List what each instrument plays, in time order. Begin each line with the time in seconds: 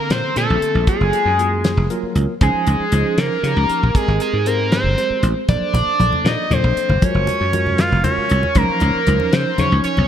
Already playing: tine electric piano D3 A#3 C4 A4, analog synth lead A#4
0.10 slap bass A#2, analog synth lead C5, snare, closed hi-hat
0.35 slap bass A#2, tine electric piano D3 A#3 C4 A4, analog synth lead A4, closed hi-hat
0.50 slap bass A#1
0.62 closed hi-hat
0.75 slap bass A#1
0.87 tine electric piano F#3 A#3 F4 G#4, analog synth lead G#4, kick, closed hi-hat
1.01 slap bass F#1
1.13 closed hi-hat
1.25 slap bass F#2
1.39 tine electric piano F#3 A#3 F4 G#4, closed hi-hat
1.64 snare, closed hi-hat
1.77 slap bass F1
1.90 tine electric piano F#3 A#3 F4 A#4, closed hi-hat
2.03 muted slap bass stroke
2.15 slap bass C#2, closed hi-hat
2.41 slap bass C#2, tine electric piano F3 C#4 D#4 C5, analog synth lead G#4, kick, closed hi-hat
2.54 muted slap bass stroke
2.67 slap bass C#2, closed hi-hat
2.80 muted slap bass stroke
2.92 slap bass C#2, tine electric piano F3 C#4 D#4 C5, closed hi-hat
3.18 slap bass C#3, analog synth lead A#4, snare, closed hi-hat
3.43 slap bass C#3, tine electric piano F3 C#4 D#4 G4, closed hi-hat
3.57 slap bass C#2
3.69 muted slap bass stroke, closed hi-hat
3.83 slap bass A#1
3.94 tine electric piano G#3 C4 G4 A#4, analog synth lead G#4, kick, closed hi-hat
4.08 slap bass G#1
4.20 analog synth lead G#4, closed hi-hat
4.33 slap bass G#2
4.46 tine electric piano G#3 C4 G4 C5, analog synth lead A#4, closed hi-hat
4.72 analog synth lead C5, snare, closed hi-hat
4.84 slap bass G1
4.98 tine electric piano G#3 C4 G4 C5, closed hi-hat
5.10 muted slap bass stroke
5.23 slap bass A1, closed hi-hat
5.49 slap bass A#1, tine electric piano A#3 D4 A4 C5, analog synth lead D5, kick, closed hi-hat, high conga, low conga
5.61 muted slap bass stroke
5.73 slap bass A#1, closed hi-hat, low conga
5.99 slap bass A#1, tine electric piano A#3 D4 A4 D5, closed hi-hat, high conga
6.12 low conga
6.24 slap bass A#2, analog synth lead D#5, snare, closed hi-hat
6.51 slap bass A#2, tine electric piano A#3 D4 A4 C5, analog synth lead C5, closed hi-hat, high conga, low conga
6.64 slap bass A#1
6.77 muted slap bass stroke, closed hi-hat
6.89 slap bass G1, low conga
7.02 tine electric piano G#3 F4 F#4 A#4, analog synth lead C#5, kick, closed hi-hat, high conga, low conga
7.14 slap bass F#1
7.27 closed hi-hat, low conga
7.41 slap bass F#2
7.53 tine electric piano G#3 F4 F#4 A#4, closed hi-hat, high conga
7.67 low conga
7.78 analog synth lead F5, snare, closed hi-hat
7.92 slap bass F1
8.04 tine electric piano G#3 F4 F#4 A#4, analog synth lead C#5, closed hi-hat, high conga, low conga
8.18 muted slap bass stroke
8.30 slap bass C2, closed hi-hat
8.43 low conga
8.55 slap bass C#2, tine electric piano F3 C#4 D#4 C5, analog synth lead A#4, kick, closed hi-hat, high conga, low conga
8.69 muted slap bass stroke
8.80 slap bass C#2, closed hi-hat, low conga
8.95 muted slap bass stroke
9.07 slap bass C#2, tine electric piano F3 C#4 D#4 C5, closed hi-hat, high conga
9.20 low conga
9.33 slap bass C#3, analog synth lead C5, snare, closed hi-hat
9.58 slap bass C#3, tine electric piano F3 C#4 D#4 C5, analog synth lead C#5, closed hi-hat, high conga, low conga
9.72 slap bass C#2
9.84 analog synth lead C#5, muted slap bass stroke, closed hi-hat
9.97 slap bass B1, low conga